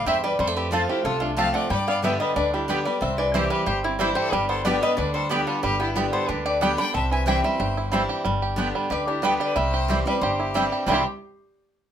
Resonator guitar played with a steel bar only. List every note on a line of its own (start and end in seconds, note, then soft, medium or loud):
0.08 0.23 E5 medium
0.24 0.39 D5 loud
0.40 0.56 C5 medium
0.57 0.72 B4 medium
0.72 0.89 A4 medium
0.90 1.04 G4 medium
1.05 1.21 A4 medium
1.20 1.30 F4 medium
1.37 1.54 A5 medium
1.54 1.70 F#5 medium
1.70 1.87 G5 medium
1.88 2.03 F5 loud
2.05 2.19 E5 medium
2.20 2.35 D#5 loud
2.36 2.52 D5 medium
2.54 2.69 G4 medium
2.69 2.85 B4 medium
2.85 3.01 D5 medium
3.02 3.18 E5 medium
3.18 3.34 D5 medium
3.34 3.50 C5 medium
3.50 3.66 B4 medium
3.67 3.83 C5 medium
3.84 3.99 E4 medium
4.01 4.16 G4 medium
4.15 4.32 C5 loud
4.32 4.48 B4 medium
4.49 4.64 C5 medium
4.65 4.81 D5 medium
4.83 4.97 D#5 loud
4.98 5.14 D5 medium
5.14 5.30 C5 loud
5.31 5.47 B4 medium
5.47 5.63 A4 medium
5.64 5.80 B4 medium
5.80 5.89 G4 medium
6.13 6.29 C5 loud
6.29 6.45 B4 medium
6.46 6.61 D5 loud
6.62 6.78 G5 medium
6.78 6.94 B5 loud
6.95 7.11 A5 medium
7.12 7.27 G#5 medium
7.28 7.44 G5 loud
7.44 7.89 E5 medium
8.92 9.08 D5 medium
9.08 9.23 G4 medium
9.24 9.40 B4 medium
9.41 9.56 D5 medium
9.56 10.03 E5 medium
10.07 10.22 D5 medium
10.21 10.75 C5 medium
10.88 11.04 C5 medium